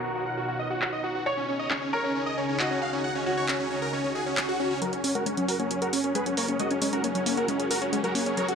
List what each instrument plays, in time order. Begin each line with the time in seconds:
Already playing: analog synth pad B2 B3 D#4 F4 C#5, grand piano A#4
0.04 supersaw synth F#4
0.15 supersaw synth F#4
0.26 supersaw synth F#5
0.37 supersaw synth F#4
0.48 supersaw synth F#4
0.59 supersaw synth D#5
0.70 supersaw synth F#4
0.82 supersaw synth F#4, clap
0.93 supersaw synth D#5
1.04 supersaw synth F#4
1.15 supersaw synth F#4
1.26 analog synth pad C#3 C#4 D#4 G#4 G#5, supersaw synth C#5, grand piano C#5
1.37 supersaw synth C#4
1.48 supersaw synth C#4
1.59 supersaw synth D#5
1.71 supersaw synth C#4, clap
1.82 supersaw synth C#4
1.93 grand piano A#4, supersaw synth C#5
2.04 supersaw synth C#4
2.15 supersaw synth C#4
2.26 supersaw synth D#5
2.38 supersaw synth C#4
2.49 supersaw synth C#4
2.59 grand piano F#4, supersaw synth D#5, clap
2.71 supersaw synth C#4
2.82 supersaw synth F5
2.93 supersaw synth C#4
3.04 supersaw synth F#5
3.15 supersaw synth C#4
3.26 supersaw synth C#4, grand piano F#4
3.37 supersaw synth C#5
3.48 supersaw synth C#4, clap
3.60 supersaw synth C#4
3.71 supersaw synth C#4
3.82 supersaw synth A#4
3.93 supersaw synth C#4, swell
4.04 supersaw synth C#4
4.15 supersaw synth G#4
4.26 supersaw synth C#4
4.37 supersaw synth C#4, clap
4.49 supersaw synth F#4
4.60 supersaw synth C#4
4.71 supersaw synth C#4
4.82 synth pluck F#3, analog synth pad F#3 C#4 G#4 A#4 F#5, supersaw synth F#4 A#4, digital synth lead A#4, closed hi-hat, riser
4.93 digital synth lead C#4, supersaw synth C#4, synth pluck F#4, closed hi-hat
5.04 digital synth lead C#4, synth pluck C#4, supersaw synth C#4, open hi-hat
5.15 synth pluck G#3, supersaw synth F#4 A#4, digital synth lead A#4, closed hi-hat
5.26 synth pluck G#3, digital synth lead C#4, supersaw synth C#4, closed hi-hat
5.37 synth pluck F#3, digital synth lead C#4, supersaw synth C#4, closed hi-hat
5.48 synth pluck C#4, supersaw synth F#4 A#4, digital synth lead A#4, open hi-hat
5.59 synth pluck A#3, digital synth lead C#4, supersaw synth C#4, closed hi-hat
5.70 synth pluck F#3, digital synth lead C#4, supersaw synth C#4, closed hi-hat
5.82 synth pluck F#4, supersaw synth F#4 A#4, digital synth lead A#4, closed hi-hat
5.93 synth pluck C#4, supersaw synth C#4, digital synth lead C#4, open hi-hat
6.04 supersaw synth C#4, digital synth lead C#4, synth pluck A#4, closed hi-hat
6.15 synth pluck G#3, supersaw synth G#4 B4, digital synth lead B4, closed hi-hat
6.26 synth pluck F#3, supersaw synth C#4, digital synth lead C#4, closed hi-hat
6.37 synth pluck A#3, supersaw synth A#4 C#5, digital synth lead C#5, open hi-hat
6.48 synth pluck A#3, supersaw synth C#4, digital synth lead C#4, closed hi-hat
6.59 synth pluck G#3, supersaw synth F#4 D#5, digital synth lead D#5, closed hi-hat
6.71 digital synth lead C#4, supersaw synth C#4, synth pluck F#4, closed hi-hat
6.82 synth pluck G#3, supersaw synth C#4, digital synth lead C#4, open hi-hat
6.93 synth pluck C#4, supersaw synth F#4 A#4, digital synth lead A#4, closed hi-hat
7.04 synth pluck A#3, digital synth lead C#4, supersaw synth C#4, closed hi-hat
7.15 synth pluck F#3, digital synth lead C#4, supersaw synth C#4, closed hi-hat
7.26 synth pluck A#3, digital synth lead C#4, supersaw synth C#4, open hi-hat
7.37 synth pluck A#3, supersaw synth F#4 A#4, digital synth lead A#4, closed hi-hat
7.48 synth pluck G#3, digital synth lead C#4, supersaw synth C#4, closed hi-hat
7.59 digital synth lead C#4, supersaw synth C#4, synth pluck F#4, closed hi-hat
7.70 supersaw synth F#4 A#4, digital synth lead A#4, synth pluck A#4, open hi-hat
7.82 digital synth lead C#4, supersaw synth C#4, synth pluck F#4, closed hi-hat
7.93 synth pluck G#3, digital synth lead C#4, supersaw synth C#4, closed hi-hat
8.04 synth pluck F#3, supersaw synth F#4 A#4, digital synth lead A#4, closed hi-hat
8.15 synth pluck A#3, digital synth lead C#4, supersaw synth C#4, open hi-hat
8.26 synth pluck A#3, digital synth lead C#4, supersaw synth C#4, closed hi-hat
8.37 synth pluck F#3, supersaw synth A#4 C#5, digital synth lead C#5, closed hi-hat
8.48 synth pluck F#4, digital synth lead F#4, supersaw synth F#4, closed hi-hat